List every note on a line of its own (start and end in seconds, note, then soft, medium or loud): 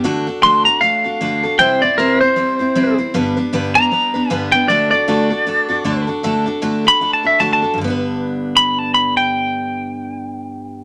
0.04 0.27 D3 loud
0.04 0.27 A3 medium
0.04 0.27 D4 medium
0.04 0.27 F#4 loud
0.04 0.26 A4 loud
0.27 0.43 F#4 medium
0.27 0.43 A4 medium
0.43 0.66 D3 medium
0.43 0.66 A3 medium
0.43 0.66 D4 medium
0.43 0.66 F#4 medium
0.43 0.65 A4 loud
0.43 0.65 C6 loud
0.65 0.81 D4 soft
0.65 0.82 F#4 medium
0.65 0.82 A4 medium
0.65 0.81 A#5 medium
0.81 1.04 A3 medium
0.81 1.05 D4 medium
0.81 1.04 F#4 medium
0.81 1.03 A4 medium
0.81 1.56 F5 loud
1.04 1.20 D4 soft
1.04 1.21 F#4 soft
1.04 1.20 A4 medium
1.21 1.43 D3 medium
1.21 1.43 A3 medium
1.21 1.44 D4 medium
1.21 1.43 F#4 medium
1.21 1.42 A4 medium
1.43 1.59 D4 medium
1.43 1.60 F#4 medium
1.43 1.59 A4 medium
1.59 1.82 C3 medium
1.59 1.82 G3 medium
1.59 1.82 C4 loud
1.59 1.82 E4 medium
1.59 1.81 C5 loud
1.59 1.81 G5 loud
1.82 1.98 C4 soft
1.82 1.98 E4 medium
1.82 1.98 C5 medium
1.82 1.97 D5 loud
1.98 2.21 C3 medium
1.98 2.21 G3 medium
1.98 2.21 C4 medium
1.98 2.21 E4 medium
1.98 2.20 A#4 medium
1.98 2.20 C5 medium
2.21 2.35 C4 soft
2.21 2.36 E4 soft
2.21 2.96 C5 medium
2.21 2.37 C5 medium
2.36 2.59 G3 medium
2.36 2.59 C4 medium
2.36 2.59 E4 medium
2.36 2.58 C5 medium
2.59 2.75 C4 soft
2.59 2.75 E4 soft
2.59 2.75 C5 medium
2.75 2.98 C3 loud
2.75 2.98 G3 loud
2.75 2.98 C4 medium
2.75 2.98 E4 medium
2.75 2.97 C5 loud
2.98 3.14 C4 soft
2.98 3.15 E4 medium
2.98 3.14 C5 medium
3.14 3.37 G2 loud
3.14 3.37 D3 loud
3.14 3.37 G3 loud
3.14 3.36 B3 loud
3.14 3.36 D4 loud
3.14 3.35 B4 loud
3.36 3.52 G3 soft
3.36 3.52 B3 medium
3.36 3.53 D4 medium
3.36 3.52 B4 medium
3.53 3.75 G2 medium
3.53 3.76 D3 medium
3.53 3.76 G3 loud
3.53 3.76 B3 medium
3.53 3.75 D4 loud
3.53 3.74 B4 loud
3.75 3.90 G3 soft
3.75 3.91 B3 soft
3.75 3.92 D4 medium
3.75 3.91 B4 medium
3.75 4.28 A#5 loud
3.91 4.14 G3 medium
3.91 4.14 B3 medium
3.91 4.13 D4 medium
3.91 4.13 B4 medium
4.14 4.29 G3 soft
4.14 4.29 B3 soft
4.14 4.30 D4 medium
4.14 4.30 B4 medium
4.28 4.53 G2 loud
4.28 4.53 D3 loud
4.28 4.53 G3 medium
4.28 4.53 B3 loud
4.28 4.52 D4 medium
4.28 4.51 B4 loud
4.28 4.50 G#5 loud
4.52 4.69 G3 soft
4.52 4.69 B3 soft
4.52 4.69 D4 soft
4.52 4.69 B4 medium
4.52 4.68 G5 medium
4.68 4.92 D3 medium
4.68 4.92 A3 medium
4.68 4.92 D4 loud
4.68 4.92 F#4 medium
4.68 4.91 A4 medium
4.68 4.90 D5 loud
4.91 5.07 D4 soft
4.91 5.07 F#4 soft
4.91 5.08 A4 medium
4.91 6.04 D5 loud
5.08 5.30 D3 medium
5.08 5.30 A3 medium
5.08 5.31 D4 medium
5.08 5.30 F#4 medium
5.08 5.29 A4 medium
5.30 5.46 D4 soft
5.30 5.46 F#4 medium
5.30 5.46 A4 medium
5.46 5.69 A3 medium
5.46 5.69 D4 medium
5.46 5.68 F#4 medium
5.46 5.67 A4 medium
5.69 5.84 D4 soft
5.69 5.84 F#4 medium
5.69 5.84 A4 medium
5.84 6.07 D3 medium
5.84 6.07 A3 medium
5.84 6.08 D4 medium
5.84 6.07 F#4 medium
5.84 6.06 A4 loud
6.07 6.23 D4 soft
6.07 6.23 F#4 medium
6.07 6.23 A4 medium
6.23 6.46 D3 medium
6.23 6.46 A3 medium
6.23 6.47 D4 loud
6.23 6.46 F#4 medium
6.23 6.45 A4 loud
6.46 6.61 D4 medium
6.46 6.61 F#4 medium
6.46 6.62 A4 medium
6.62 6.85 D3 medium
6.62 6.85 A3 loud
6.62 6.85 D4 medium
6.62 6.84 F#4 medium
6.62 6.83 A4 medium
6.85 7.00 D4 soft
6.85 7.01 F#4 soft
6.85 7.01 A4 medium
6.85 7.13 B5 loud
7.01 7.24 A3 medium
7.01 7.24 D4 medium
7.01 7.23 F#4 medium
7.01 7.22 A4 medium
7.13 7.26 A5 medium
7.23 7.39 D4 soft
7.23 7.39 F#4 soft
7.23 7.40 A4 medium
7.23 7.39 E5 medium
7.39 7.62 D3 medium
7.39 7.63 A3 medium
7.39 7.63 D4 medium
7.39 7.62 F#4 medium
7.39 7.61 A4 medium
7.39 7.52 A5 medium
7.53 7.78 A5 loud
7.62 7.79 D4 soft
7.62 7.79 F#4 soft
7.62 7.78 A4 medium
7.74 10.84 G2 medium
7.78 10.84 D3 medium
7.78 10.84 G3 medium
7.84 10.84 B3 medium
7.84 10.84 D4 medium
7.90 10.84 B4 medium
8.57 8.79 B5 loud
8.79 8.94 A5 medium
8.94 9.17 B5 medium
9.17 10.84 G5 loud